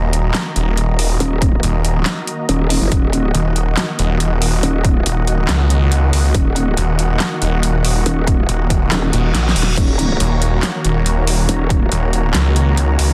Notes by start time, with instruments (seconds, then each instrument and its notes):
Already playing: detuned saw bass D#1, supersaw synth D#3 A#3 F#4 D#5 A#5
0.13 closed hi-hat
0.35 snare, clap, closed hi-hat
0.56 detuned saw bass D#1, closed hi-hat
0.77 closed hi-hat
0.99 open hi-hat
1.20 wobble bass D#1, closed hi-hat
1.42 kick, closed hi-hat
1.63 detuned saw bass D#1, closed hi-hat
1.85 closed hi-hat
2.06 snare, clap, closed hi-hat
2.27 closed hi-hat
2.49 wobble bass D#1, closed hi-hat
2.70 open hi-hat
2.81 wobble bass F#1
2.92 wobble bass D#1, supersaw synth F#5, kick, closed hi-hat
3.13 closed hi-hat
3.35 detuned saw bass D#1, closed hi-hat
3.56 closed hi-hat
3.77 snare, clap, closed hi-hat
3.99 detuned saw bass D#1, closed hi-hat
4.20 closed hi-hat
4.42 open hi-hat
4.63 wobble bass D#1, closed hi-hat
4.85 kick, closed hi-hat
5.06 detuned saw bass D#1, closed hi-hat
5.27 closed hi-hat
5.49 detuned saw bass C#2, snare, clap, closed hi-hat
5.70 closed hi-hat
5.92 closed hi-hat
6.13 detuned saw bass C#2, open hi-hat
6.35 wobble bass D#1, kick, closed hi-hat
6.56 closed hi-hat
6.77 detuned saw bass D#1, closed hi-hat
6.99 closed hi-hat
7.20 snare, clap, closed hi-hat
7.42 detuned saw bass D#1, closed hi-hat
7.63 closed hi-hat
7.85 open hi-hat
8.06 wobble bass D#1, closed hi-hat
8.27 kick, closed hi-hat
8.49 detuned saw bass D#1, closed hi-hat
8.70 kick, closed hi-hat
8.92 wobble bass D#1, snare, clap, closed hi-hat, reverse cymbal
9.13 detuned saw bass D#1, closed hi-hat
9.35 detuned saw bass A#1, snare, closed hi-hat
9.49 snare
9.56 detuned saw bass D#1, open hi-hat
9.63 snare
9.77 wobble bass D#1, supersaw synth C#5 A#5, kick, closed hi-hat, crash
9.99 closed hi-hat
10.20 detuned saw bass D#1, closed hi-hat
10.42 closed hi-hat
10.63 snare, clap, closed hi-hat
10.85 detuned saw bass D#1, closed hi-hat
11.06 closed hi-hat
11.27 open hi-hat
11.49 wobble bass D#1, closed hi-hat
11.70 kick, closed hi-hat
11.92 detuned saw bass D#1, closed hi-hat
12.13 closed hi-hat
12.35 detuned saw bass C#2, snare, clap, closed hi-hat
12.56 closed hi-hat
12.77 closed hi-hat
12.99 detuned saw bass C#2, open hi-hat